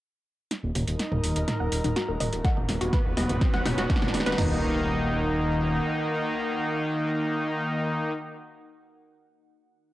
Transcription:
0.51 0.56 D#4 medium
0.51 4.34 D#4 medium
0.51 3.07 D#4 medium
0.51 4.34 F#5 medium
0.51 snare soft
0.51 closed hi-hat medium
0.51 riser medium
0.63 0.71 D#1 medium
0.63 2.45 A#4 medium
0.75 0.83 D#1 loud
0.75 0.87 F#4 medium
0.75 mid tom medium
0.75 open hi-hat loud
0.87 0.95 D#1 medium
0.87 closed hi-hat medium
0.99 snare medium
0.99 closed hi-hat medium
1.12 1.19 D#1 medium
1.12 1.20 A#4 medium
1.12 mid tom medium
1.24 1.31 D#1 loud
1.24 1.37 D#3 medium
1.24 1.37 A#3 medium
1.24 1.37 D#4 loud
1.24 open hi-hat loud
1.36 1.43 D#1 medium
1.36 1.45 D#5 medium
1.36 closed hi-hat medium
1.48 snare medium
1.48 closed hi-hat medium
1.48 mid tom medium
1.60 1.68 D#1 medium
1.60 1.69 F#5 medium
1.72 1.80 D#1 loud
1.72 open hi-hat loud
1.84 1.92 D#1 medium
1.84 1.96 D#4 loud
1.84 closed hi-hat medium
1.84 mid tom medium
1.96 2.08 F#4 loud
1.96 snare medium
1.96 closed hi-hat medium
2.08 2.16 D#1 medium
2.08 2.17 A#4 medium
2.20 2.28 D#1 loud
2.20 2.32 D#5 medium
2.20 mid tom medium
2.20 open hi-hat loud
2.33 2.40 D#1 medium
2.33 closed hi-hat medium
2.45 4.38 B3 loud
2.45 4.36 B4 medium
2.45 2.53 F#5 medium
2.45 kick loud
2.45 snare medium
2.45 closed hi-hat medium
2.57 2.64 D#1 medium
2.57 2.65 D#4 medium
2.57 mid tom medium
2.69 2.77 D#1 loud
2.69 snare medium
2.69 open hi-hat loud
2.81 2.89 D#1 medium
2.81 2.92 F#4 loud
2.81 closed hi-hat medium
2.93 4.38 F#4 medium
2.93 2.98 B4 loud
2.93 4.38 B4 medium
2.93 kick loud
2.93 snare medium
2.93 closed hi-hat medium
2.93 mid tom medium
3.05 3.13 D#1 medium
3.17 3.25 D#1 loud
3.17 3.31 B2 loud
3.17 3.31 F#3 medium
3.17 3.31 B3 loud
3.17 3.29 D#5 medium
3.17 snare medium
3.17 open hi-hat loud
3.29 3.37 D#1 medium
3.29 closed hi-hat medium
3.29 mid tom medium
3.41 kick loud
3.41 snare medium
3.41 closed hi-hat medium
3.54 3.61 D#1 medium
3.54 3.62 F#5 medium
3.54 snare medium
3.66 3.73 D#1 loud
3.66 3.79 B2 medium
3.66 3.79 F#3 medium
3.66 3.79 B3 medium
3.66 3.71 D#4 medium
3.66 snare loud
3.66 mid tom medium
3.66 open hi-hat loud
3.78 3.85 D#1 medium
3.78 3.89 F#4 loud
3.78 snare medium
3.78 closed hi-hat medium
3.90 kick loud
3.90 snare loud
3.90 closed hi-hat medium
3.96 snare medium
4.02 4.10 D#1 medium
4.02 snare medium
4.02 mid tom medium
4.08 snare medium
4.14 4.22 D#1 loud
4.14 snare loud
4.14 open hi-hat loud
4.20 snare loud
4.26 4.34 D#1 loud
4.26 4.31 B4 medium
4.26 snare loud
4.26 closed hi-hat medium
4.32 snare loud
4.38 5.79 D#1 loud
4.38 8.13 D#3 medium
4.38 8.13 A#3 medium
4.38 8.12 D#4 medium
4.38 8.13 D#4 medium
4.38 4.61 D#4 loud
4.38 8.13 D#4 loud
4.38 8.13 A#4 medium
4.38 8.13 F#5 medium
4.38 snare loud
4.38 floor tom loud
4.38 crash medium
4.38 impact medium
4.45 8.20 A#4 medium

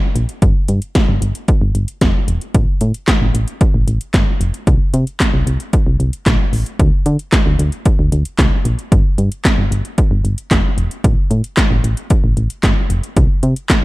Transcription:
0.16 0.27 A#1 loud
0.16 closed hi-hat medium
0.29 closed hi-hat soft
0.42 0.53 G1 loud
0.42 kick loud
0.42 closed hi-hat medium
0.68 0.80 G2 medium
0.68 closed hi-hat medium
0.82 closed hi-hat medium
0.95 kick loud
0.95 snare loud
0.95 closed hi-hat medium
1.09 1.20 G1 loud
1.22 1.33 G1 medium
1.22 closed hi-hat medium
1.35 closed hi-hat medium
1.48 kick loud
1.48 closed hi-hat medium
1.62 1.73 G1 loud
1.75 1.86 G1 loud
1.75 closed hi-hat medium
1.88 closed hi-hat medium
2.01 2.13 F1 medium
2.01 kick loud
2.01 snare loud
2.01 closed hi-hat medium
2.28 2.39 E1 medium
2.28 closed hi-hat medium
2.41 closed hi-hat medium
2.54 2.66 A1 loud
2.54 kick loud
2.54 closed hi-hat medium
2.81 2.92 A2 loud
2.81 closed hi-hat medium
2.94 closed hi-hat medium
3.08 kick loud
3.08 snare loud
3.08 clap medium
3.08 closed hi-hat medium
3.21 3.32 A1 loud
3.34 3.46 A1 loud
3.34 closed hi-hat medium
3.48 closed hi-hat medium
3.61 kick loud
3.61 closed hi-hat medium
3.74 3.85 A1 medium
3.88 3.99 A1 loud
3.88 closed hi-hat medium
4.01 closed hi-hat medium
4.14 4.25 G1 medium
4.14 kick loud
4.14 snare loud
4.14 clap medium
4.14 closed hi-hat medium
4.41 4.52 F1 loud
4.41 closed hi-hat medium
4.54 closed hi-hat medium
4.67 4.78 C2 loud
4.67 kick loud
4.67 closed hi-hat medium
4.94 5.05 C3 loud
4.94 closed hi-hat medium
5.07 closed hi-hat medium
5.20 kick loud
5.20 snare loud
5.20 clap loud
5.20 closed hi-hat medium
5.34 5.45 C2 loud
5.47 5.58 C2 loud
5.47 closed hi-hat medium
5.60 closed hi-hat medium
5.73 kick loud
5.73 closed hi-hat medium
5.87 5.98 C2 medium
6.00 6.11 C2 medium
6.00 closed hi-hat medium
6.13 closed hi-hat medium
6.26 6.38 A#1 loud
6.26 kick loud
6.26 snare loud
6.26 clap medium
6.26 closed hi-hat medium
6.53 6.64 A1 medium
6.53 open hi-hat medium
6.66 closed hi-hat medium
6.80 6.91 D2 loud
6.80 kick loud
6.80 closed hi-hat medium
7.06 7.17 D3 loud
7.06 closed hi-hat medium
7.19 closed hi-hat medium
7.32 kick loud
7.32 snare loud
7.32 clap medium
7.32 closed hi-hat medium
7.46 7.57 D2 loud
7.59 7.70 D2 loud
7.59 closed hi-hat medium
7.72 closed hi-hat medium
7.85 kick loud
7.85 closed hi-hat medium
7.99 8.10 D2 medium
8.12 8.23 D2 loud
8.12 closed hi-hat medium
8.25 closed hi-hat medium
8.39 8.50 C2 medium
8.39 kick loud
8.39 snare loud
8.39 clap medium
8.39 closed hi-hat medium
8.65 8.76 A#1 loud
8.65 closed hi-hat medium
8.79 closed hi-hat medium
8.92 9.03 G1 loud
8.92 kick loud
8.92 closed hi-hat medium
9.18 9.29 G2 loud
9.18 closed hi-hat medium
9.32 closed hi-hat medium
9.45 kick loud
9.45 snare loud
9.45 clap loud
9.45 closed hi-hat medium
9.58 9.69 G1 loud
9.71 9.83 G1 medium
9.71 closed hi-hat medium
9.85 closed hi-hat medium
9.98 kick loud
9.98 closed hi-hat medium
10.11 10.22 G1 loud
10.25 10.36 G1 loud
10.25 closed hi-hat medium
10.38 closed hi-hat medium
10.51 10.62 F1 medium
10.51 kick loud
10.51 snare loud
10.51 clap medium
10.51 closed hi-hat medium
10.78 10.89 E1 medium
10.78 closed hi-hat medium
10.91 closed hi-hat medium
11.04 11.15 A1 loud
11.04 kick loud
11.04 closed hi-hat medium
11.31 11.42 A2 medium
11.31 closed hi-hat medium
11.44 closed hi-hat medium
11.57 kick loud
11.57 snare loud
11.57 clap loud
11.57 closed hi-hat medium
11.71 11.82 A1 loud
11.84 11.95 A1 loud
11.84 closed hi-hat medium
11.97 closed hi-hat medium
12.10 kick loud
12.10 closed hi-hat medium
12.24 12.35 A1 loud
12.37 12.48 A1 medium
12.37 closed hi-hat medium
12.50 closed hi-hat medium
12.63 12.75 G1 loud
12.63 kick loud
12.63 snare loud
12.63 clap medium
12.63 closed hi-hat medium
12.90 13.01 F1 loud
12.90 closed hi-hat medium
13.03 closed hi-hat medium
13.17 13.28 C2 loud
13.17 kick loud
13.17 closed hi-hat medium
13.43 13.54 C3 loud
13.43 closed hi-hat medium
13.56 closed hi-hat medium
13.70 kick loud
13.70 snare loud
13.70 clap medium
13.70 closed hi-hat medium

